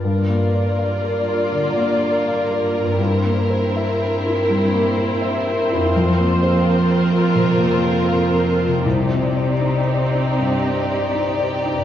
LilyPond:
<<
  \new Staff \with { instrumentName = "Violin section" } { \time 4/4 \key g \minor \tempo 4 = 82 << { d''1 | c''1~ | c''1 | d''1 | } \\ { bes'1~ | bes'1 | bes'1 | g'1 | } >> }
  \new Staff \with { instrumentName = "Felt piano" } { \time 4/4 \key g \minor \tuplet 3/2 { g,8 bes8 d''8 f''8 bes'8 f'8 d8 bes8 d''8 f''8 bes'8 f'8 } | \tuplet 3/2 { g,8 bes8 c''8 e''8 bes'8 e'8 g8 bes8 c''8 e''8 bes'8 e'8 } | \tuplet 3/2 { f,8 bes8 c''8 f''8 bes'8 f'8 c8 bes8 c''8 f''8 bes'8 f'8 } | \tuplet 3/2 { c,8 c'8 d''8 ees'8 c''8 ees'8 g,8 c'8 d''8 ees'8 c''8 ees'8 } | }
  \new Staff \with { instrumentName = "Viola section" } { \time 4/4 \key g \minor << { f'1 | e'1 | f'1 | ees'2.~ ees'8. r16 | } \\ { bes1 | c'1~ | c'1 | c'2.~ c'8. r16 | } >> }
  \new Staff \with { instrumentName = "Harp" } { \time 4/4 \key g \minor <g, d' f' bes'>1 | <g, c' e' bes'>1 | <f, c' f' bes'>1 | <c c' ees' d''>1 | }
  \new Staff \with { instrumentName = "Cello section" } { \clef bass \time 4/4 \key g \minor g,1~ | g,1 | f,1 | c2.~ c8. r16 | }
>>